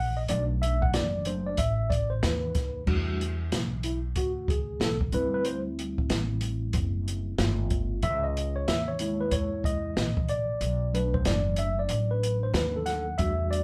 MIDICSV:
0, 0, Header, 1, 4, 480
1, 0, Start_track
1, 0, Tempo, 645161
1, 217, Time_signature, 4, 2, 24, 8
1, 10147, End_track
2, 0, Start_track
2, 0, Title_t, "Tine electric piano"
2, 0, Program_c, 0, 4
2, 0, Note_on_c, 0, 78, 111
2, 125, Note_on_c, 0, 75, 93
2, 130, Note_off_c, 0, 78, 0
2, 166, Note_off_c, 0, 75, 0
2, 213, Note_on_c, 0, 54, 62
2, 217, Note_on_c, 0, 57, 57
2, 217, Note_on_c, 0, 74, 106
2, 221, Note_on_c, 0, 62, 63
2, 325, Note_off_c, 0, 74, 0
2, 459, Note_on_c, 0, 76, 97
2, 610, Note_on_c, 0, 78, 102
2, 613, Note_off_c, 0, 76, 0
2, 699, Note_on_c, 0, 74, 98
2, 701, Note_off_c, 0, 78, 0
2, 905, Note_off_c, 0, 54, 0
2, 907, Note_off_c, 0, 57, 0
2, 909, Note_off_c, 0, 62, 0
2, 936, Note_on_c, 0, 54, 52
2, 942, Note_on_c, 0, 57, 45
2, 942, Note_on_c, 0, 72, 78
2, 944, Note_on_c, 0, 62, 57
2, 945, Note_off_c, 0, 74, 0
2, 1089, Note_on_c, 0, 74, 87
2, 1094, Note_off_c, 0, 72, 0
2, 1152, Note_off_c, 0, 54, 0
2, 1155, Note_off_c, 0, 57, 0
2, 1157, Note_off_c, 0, 62, 0
2, 1177, Note_on_c, 0, 76, 92
2, 1180, Note_off_c, 0, 74, 0
2, 1412, Note_on_c, 0, 74, 91
2, 1424, Note_off_c, 0, 76, 0
2, 1562, Note_on_c, 0, 72, 80
2, 1569, Note_off_c, 0, 74, 0
2, 1648, Note_off_c, 0, 72, 0
2, 1658, Note_on_c, 0, 71, 73
2, 2107, Note_off_c, 0, 71, 0
2, 2131, Note_on_c, 0, 55, 56
2, 2134, Note_on_c, 0, 57, 51
2, 2137, Note_on_c, 0, 62, 48
2, 2139, Note_on_c, 0, 66, 62
2, 2476, Note_off_c, 0, 55, 0
2, 2478, Note_off_c, 0, 57, 0
2, 2479, Note_off_c, 0, 62, 0
2, 2480, Note_off_c, 0, 66, 0
2, 2858, Note_on_c, 0, 64, 74
2, 2965, Note_off_c, 0, 64, 0
2, 3105, Note_on_c, 0, 66, 88
2, 3348, Note_off_c, 0, 66, 0
2, 3349, Note_on_c, 0, 68, 87
2, 3589, Note_on_c, 0, 69, 92
2, 3590, Note_off_c, 0, 68, 0
2, 3694, Note_off_c, 0, 69, 0
2, 3814, Note_on_c, 0, 55, 63
2, 3818, Note_on_c, 0, 60, 49
2, 3823, Note_on_c, 0, 64, 65
2, 3827, Note_on_c, 0, 71, 109
2, 3965, Note_off_c, 0, 71, 0
2, 3974, Note_on_c, 0, 71, 101
2, 4054, Note_off_c, 0, 71, 0
2, 4058, Note_on_c, 0, 72, 92
2, 4166, Note_off_c, 0, 72, 0
2, 5465, Note_off_c, 0, 55, 0
2, 5468, Note_off_c, 0, 60, 0
2, 5470, Note_off_c, 0, 64, 0
2, 5493, Note_on_c, 0, 57, 61
2, 5496, Note_on_c, 0, 59, 49
2, 5501, Note_on_c, 0, 65, 59
2, 5951, Note_off_c, 0, 57, 0
2, 5952, Note_off_c, 0, 59, 0
2, 5955, Note_off_c, 0, 65, 0
2, 5975, Note_on_c, 0, 76, 118
2, 6127, Note_on_c, 0, 75, 100
2, 6131, Note_off_c, 0, 76, 0
2, 6367, Note_on_c, 0, 73, 100
2, 6374, Note_off_c, 0, 75, 0
2, 6456, Note_on_c, 0, 76, 105
2, 6459, Note_off_c, 0, 73, 0
2, 6607, Note_on_c, 0, 73, 102
2, 6611, Note_off_c, 0, 76, 0
2, 6693, Note_on_c, 0, 56, 58
2, 6695, Note_on_c, 0, 58, 49
2, 6699, Note_on_c, 0, 64, 69
2, 6849, Note_on_c, 0, 71, 93
2, 6854, Note_off_c, 0, 73, 0
2, 6938, Note_on_c, 0, 73, 104
2, 6940, Note_off_c, 0, 71, 0
2, 7160, Note_off_c, 0, 73, 0
2, 7181, Note_on_c, 0, 75, 106
2, 7385, Note_off_c, 0, 56, 0
2, 7386, Note_off_c, 0, 58, 0
2, 7388, Note_off_c, 0, 64, 0
2, 7659, Note_on_c, 0, 74, 114
2, 7673, Note_off_c, 0, 75, 0
2, 8133, Note_on_c, 0, 54, 58
2, 8138, Note_on_c, 0, 57, 54
2, 8143, Note_on_c, 0, 71, 85
2, 8144, Note_on_c, 0, 62, 72
2, 8152, Note_off_c, 0, 74, 0
2, 8280, Note_off_c, 0, 71, 0
2, 8289, Note_on_c, 0, 72, 90
2, 8380, Note_off_c, 0, 72, 0
2, 8381, Note_on_c, 0, 74, 99
2, 8621, Note_on_c, 0, 76, 93
2, 8626, Note_off_c, 0, 74, 0
2, 8772, Note_on_c, 0, 74, 86
2, 8774, Note_off_c, 0, 76, 0
2, 9010, Note_on_c, 0, 71, 85
2, 9017, Note_off_c, 0, 74, 0
2, 9249, Note_on_c, 0, 72, 85
2, 9255, Note_off_c, 0, 71, 0
2, 9340, Note_off_c, 0, 72, 0
2, 9342, Note_on_c, 0, 71, 92
2, 9494, Note_off_c, 0, 71, 0
2, 9495, Note_on_c, 0, 69, 70
2, 9566, Note_on_c, 0, 78, 108
2, 9714, Note_off_c, 0, 69, 0
2, 9785, Note_off_c, 0, 54, 0
2, 9788, Note_off_c, 0, 57, 0
2, 9790, Note_off_c, 0, 62, 0
2, 9804, Note_on_c, 0, 76, 109
2, 9811, Note_on_c, 0, 55, 55
2, 9813, Note_on_c, 0, 57, 49
2, 9818, Note_on_c, 0, 62, 46
2, 9819, Note_off_c, 0, 78, 0
2, 9821, Note_on_c, 0, 66, 66
2, 10049, Note_on_c, 0, 74, 100
2, 10058, Note_off_c, 0, 76, 0
2, 10147, Note_off_c, 0, 55, 0
2, 10147, Note_off_c, 0, 57, 0
2, 10147, Note_off_c, 0, 62, 0
2, 10147, Note_off_c, 0, 66, 0
2, 10147, Note_off_c, 0, 74, 0
2, 10147, End_track
3, 0, Start_track
3, 0, Title_t, "Upright bass"
3, 0, Program_c, 1, 32
3, 0, Note_on_c, 1, 34, 90
3, 192, Note_off_c, 1, 34, 0
3, 223, Note_on_c, 1, 35, 104
3, 676, Note_off_c, 1, 35, 0
3, 700, Note_on_c, 1, 30, 89
3, 1154, Note_off_c, 1, 30, 0
3, 1175, Note_on_c, 1, 33, 98
3, 1632, Note_off_c, 1, 33, 0
3, 1659, Note_on_c, 1, 39, 98
3, 2114, Note_off_c, 1, 39, 0
3, 2137, Note_on_c, 1, 40, 110
3, 2593, Note_off_c, 1, 40, 0
3, 2619, Note_on_c, 1, 35, 77
3, 3074, Note_off_c, 1, 35, 0
3, 3093, Note_on_c, 1, 38, 84
3, 3551, Note_off_c, 1, 38, 0
3, 3569, Note_on_c, 1, 35, 91
3, 3801, Note_off_c, 1, 35, 0
3, 3812, Note_on_c, 1, 38, 91
3, 4505, Note_off_c, 1, 38, 0
3, 4534, Note_on_c, 1, 33, 86
3, 4991, Note_off_c, 1, 33, 0
3, 5013, Note_on_c, 1, 30, 101
3, 5471, Note_off_c, 1, 30, 0
3, 5493, Note_on_c, 1, 31, 113
3, 5951, Note_off_c, 1, 31, 0
3, 5975, Note_on_c, 1, 37, 123
3, 6432, Note_off_c, 1, 37, 0
3, 6455, Note_on_c, 1, 39, 88
3, 6912, Note_off_c, 1, 39, 0
3, 6932, Note_on_c, 1, 40, 88
3, 7390, Note_off_c, 1, 40, 0
3, 7413, Note_on_c, 1, 34, 87
3, 7871, Note_off_c, 1, 34, 0
3, 7892, Note_on_c, 1, 35, 101
3, 8350, Note_off_c, 1, 35, 0
3, 8372, Note_on_c, 1, 30, 91
3, 8830, Note_off_c, 1, 30, 0
3, 8850, Note_on_c, 1, 33, 104
3, 9309, Note_off_c, 1, 33, 0
3, 9326, Note_on_c, 1, 39, 112
3, 9787, Note_off_c, 1, 39, 0
3, 9815, Note_on_c, 1, 40, 105
3, 10147, Note_off_c, 1, 40, 0
3, 10147, End_track
4, 0, Start_track
4, 0, Title_t, "Drums"
4, 211, Note_on_c, 9, 42, 87
4, 286, Note_off_c, 9, 42, 0
4, 467, Note_on_c, 9, 42, 78
4, 541, Note_off_c, 9, 42, 0
4, 613, Note_on_c, 9, 36, 83
4, 687, Note_off_c, 9, 36, 0
4, 696, Note_on_c, 9, 42, 87
4, 699, Note_on_c, 9, 38, 98
4, 770, Note_off_c, 9, 42, 0
4, 773, Note_off_c, 9, 38, 0
4, 930, Note_on_c, 9, 42, 78
4, 1005, Note_off_c, 9, 42, 0
4, 1171, Note_on_c, 9, 42, 91
4, 1176, Note_on_c, 9, 36, 82
4, 1245, Note_off_c, 9, 42, 0
4, 1250, Note_off_c, 9, 36, 0
4, 1416, Note_on_c, 9, 36, 87
4, 1428, Note_on_c, 9, 42, 77
4, 1491, Note_off_c, 9, 36, 0
4, 1502, Note_off_c, 9, 42, 0
4, 1658, Note_on_c, 9, 38, 115
4, 1661, Note_on_c, 9, 42, 80
4, 1732, Note_off_c, 9, 38, 0
4, 1735, Note_off_c, 9, 42, 0
4, 1895, Note_on_c, 9, 42, 53
4, 1898, Note_on_c, 9, 36, 95
4, 1907, Note_on_c, 9, 38, 38
4, 1969, Note_off_c, 9, 42, 0
4, 1973, Note_off_c, 9, 36, 0
4, 1982, Note_off_c, 9, 38, 0
4, 2135, Note_on_c, 9, 49, 86
4, 2138, Note_on_c, 9, 36, 96
4, 2210, Note_off_c, 9, 49, 0
4, 2213, Note_off_c, 9, 36, 0
4, 2389, Note_on_c, 9, 42, 71
4, 2464, Note_off_c, 9, 42, 0
4, 2619, Note_on_c, 9, 42, 91
4, 2622, Note_on_c, 9, 38, 101
4, 2694, Note_off_c, 9, 42, 0
4, 2697, Note_off_c, 9, 38, 0
4, 2852, Note_on_c, 9, 42, 77
4, 2926, Note_off_c, 9, 42, 0
4, 3092, Note_on_c, 9, 42, 83
4, 3095, Note_on_c, 9, 36, 78
4, 3167, Note_off_c, 9, 42, 0
4, 3170, Note_off_c, 9, 36, 0
4, 3335, Note_on_c, 9, 36, 99
4, 3349, Note_on_c, 9, 42, 73
4, 3410, Note_off_c, 9, 36, 0
4, 3423, Note_off_c, 9, 42, 0
4, 3577, Note_on_c, 9, 38, 114
4, 3580, Note_on_c, 9, 42, 75
4, 3652, Note_off_c, 9, 38, 0
4, 3655, Note_off_c, 9, 42, 0
4, 3726, Note_on_c, 9, 36, 82
4, 3801, Note_off_c, 9, 36, 0
4, 3812, Note_on_c, 9, 42, 54
4, 3886, Note_off_c, 9, 42, 0
4, 4052, Note_on_c, 9, 42, 70
4, 4127, Note_off_c, 9, 42, 0
4, 4306, Note_on_c, 9, 42, 71
4, 4381, Note_off_c, 9, 42, 0
4, 4451, Note_on_c, 9, 36, 79
4, 4525, Note_off_c, 9, 36, 0
4, 4536, Note_on_c, 9, 42, 92
4, 4539, Note_on_c, 9, 38, 96
4, 4610, Note_off_c, 9, 42, 0
4, 4614, Note_off_c, 9, 38, 0
4, 4768, Note_on_c, 9, 42, 85
4, 4842, Note_off_c, 9, 42, 0
4, 5008, Note_on_c, 9, 42, 85
4, 5013, Note_on_c, 9, 36, 92
4, 5083, Note_off_c, 9, 42, 0
4, 5087, Note_off_c, 9, 36, 0
4, 5265, Note_on_c, 9, 42, 65
4, 5340, Note_off_c, 9, 42, 0
4, 5495, Note_on_c, 9, 38, 116
4, 5497, Note_on_c, 9, 42, 77
4, 5569, Note_off_c, 9, 38, 0
4, 5572, Note_off_c, 9, 42, 0
4, 5731, Note_on_c, 9, 42, 60
4, 5735, Note_on_c, 9, 36, 89
4, 5806, Note_off_c, 9, 42, 0
4, 5810, Note_off_c, 9, 36, 0
4, 5971, Note_on_c, 9, 42, 81
4, 5975, Note_on_c, 9, 36, 103
4, 6045, Note_off_c, 9, 42, 0
4, 6050, Note_off_c, 9, 36, 0
4, 6226, Note_on_c, 9, 42, 74
4, 6301, Note_off_c, 9, 42, 0
4, 6457, Note_on_c, 9, 42, 92
4, 6460, Note_on_c, 9, 38, 104
4, 6532, Note_off_c, 9, 42, 0
4, 6535, Note_off_c, 9, 38, 0
4, 6689, Note_on_c, 9, 42, 94
4, 6764, Note_off_c, 9, 42, 0
4, 6930, Note_on_c, 9, 42, 88
4, 6932, Note_on_c, 9, 36, 78
4, 7004, Note_off_c, 9, 42, 0
4, 7007, Note_off_c, 9, 36, 0
4, 7173, Note_on_c, 9, 36, 98
4, 7185, Note_on_c, 9, 42, 69
4, 7248, Note_off_c, 9, 36, 0
4, 7260, Note_off_c, 9, 42, 0
4, 7416, Note_on_c, 9, 38, 119
4, 7419, Note_on_c, 9, 42, 73
4, 7491, Note_off_c, 9, 38, 0
4, 7494, Note_off_c, 9, 42, 0
4, 7566, Note_on_c, 9, 36, 89
4, 7641, Note_off_c, 9, 36, 0
4, 7652, Note_on_c, 9, 42, 59
4, 7726, Note_off_c, 9, 42, 0
4, 7893, Note_on_c, 9, 42, 77
4, 7968, Note_off_c, 9, 42, 0
4, 8144, Note_on_c, 9, 42, 71
4, 8219, Note_off_c, 9, 42, 0
4, 8290, Note_on_c, 9, 36, 84
4, 8364, Note_off_c, 9, 36, 0
4, 8371, Note_on_c, 9, 42, 101
4, 8374, Note_on_c, 9, 38, 97
4, 8445, Note_off_c, 9, 42, 0
4, 8449, Note_off_c, 9, 38, 0
4, 8603, Note_on_c, 9, 42, 86
4, 8678, Note_off_c, 9, 42, 0
4, 8844, Note_on_c, 9, 42, 78
4, 8919, Note_off_c, 9, 42, 0
4, 9102, Note_on_c, 9, 42, 68
4, 9176, Note_off_c, 9, 42, 0
4, 9331, Note_on_c, 9, 38, 110
4, 9334, Note_on_c, 9, 42, 77
4, 9406, Note_off_c, 9, 38, 0
4, 9409, Note_off_c, 9, 42, 0
4, 9568, Note_on_c, 9, 42, 56
4, 9581, Note_on_c, 9, 38, 38
4, 9643, Note_off_c, 9, 42, 0
4, 9655, Note_off_c, 9, 38, 0
4, 9809, Note_on_c, 9, 42, 79
4, 9815, Note_on_c, 9, 36, 108
4, 9884, Note_off_c, 9, 42, 0
4, 9889, Note_off_c, 9, 36, 0
4, 10064, Note_on_c, 9, 42, 63
4, 10138, Note_off_c, 9, 42, 0
4, 10147, End_track
0, 0, End_of_file